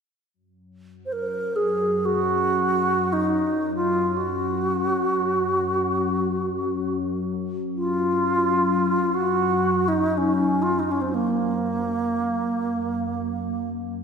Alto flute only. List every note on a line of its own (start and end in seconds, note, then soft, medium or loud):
1.06 1.14 C5 soft
1.12 1.58 A#4 medium
1.56 2.07 G#4 medium
2.05 3.14 F#4 medium
3.13 3.75 D#4 medium
3.76 4.18 F4 medium
4.17 6.94 F#4 medium
7.76 9.16 F4 medium
9.14 9.90 F#4 medium
9.88 10.19 D#4 medium
10.18 10.64 C#4 medium
10.62 10.81 F4 medium
10.79 10.93 D#4 medium
10.91 11.03 C#4 medium
11.01 11.09 C4 medium
11.09 11.11 C4 medium
11.14 13.69 A#3 medium